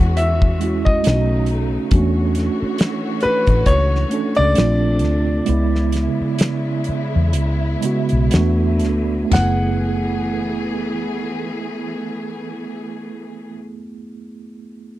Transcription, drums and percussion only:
0.17 closed hi-hat
0.42 kick
0.61 closed hi-hat
0.86 kick
1.04 snare, closed hi-hat
1.46 closed hi-hat
1.91 kick, closed hi-hat
2.35 snare, closed hi-hat
2.78 snare, closed hi-hat
3.21 closed hi-hat
3.47 kick, closed hi-hat
3.66 kick, closed hi-hat
3.95 snare
4.11 closed hi-hat
4.35 closed hi-hat
4.55 snare, closed hi-hat
4.99 closed hi-hat
5.03 snare
5.46 closed hi-hat
5.75 snare
5.92 snare, closed hi-hat
6.38 snare, closed hi-hat
6.84 closed hi-hat
7.33 closed hi-hat
7.82 closed hi-hat
8.09 closed hi-hat
8.31 snare, closed hi-hat
8.79 closed hi-hat
8.84 snare
9.32 snare, floor tom, splash

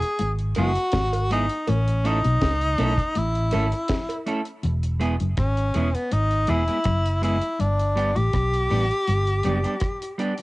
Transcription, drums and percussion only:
0.02 closed hi-hat
0.19 closed hi-hat
0.39 closed hi-hat
0.55 closed hi-hat, cowbell
0.75 closed hi-hat
0.92 kick, snare, closed hi-hat
1.13 closed hi-hat, cowbell
1.31 closed hi-hat
1.49 closed hi-hat
1.67 closed hi-hat, cowbell
1.88 closed hi-hat
2.05 closed hi-hat
2.24 closed hi-hat
2.42 kick, snare, closed hi-hat, cowbell
2.61 closed hi-hat
2.78 closed hi-hat, cowbell
2.98 kick, closed hi-hat
3.15 closed hi-hat
3.35 closed hi-hat
3.51 closed hi-hat, cowbell
3.72 closed hi-hat
3.88 kick, snare, closed hi-hat
4.09 closed hi-hat, cowbell
4.27 closed hi-hat
4.45 closed hi-hat
4.63 closed hi-hat
4.83 closed hi-hat
5.01 closed hi-hat
5.20 closed hi-hat
5.37 kick, cross-stick, closed hi-hat
5.57 closed hi-hat
5.74 closed hi-hat
5.94 closed hi-hat
6.11 closed hi-hat
6.31 closed hi-hat
6.47 closed hi-hat
6.68 closed hi-hat
6.84 kick, cross-stick, closed hi-hat
7.06 closed hi-hat
7.23 closed hi-hat
7.42 closed hi-hat
7.60 closed hi-hat
7.80 closed hi-hat
7.97 closed hi-hat
8.16 closed hi-hat
8.33 kick, cross-stick, closed hi-hat
8.54 closed hi-hat
8.70 open hi-hat
8.91 closed hi-hat
9.07 closed hi-hat
9.27 closed hi-hat
9.43 closed hi-hat
9.64 closed hi-hat
9.80 kick, cross-stick, closed hi-hat
10.02 closed hi-hat
10.19 closed hi-hat
10.38 closed hi-hat

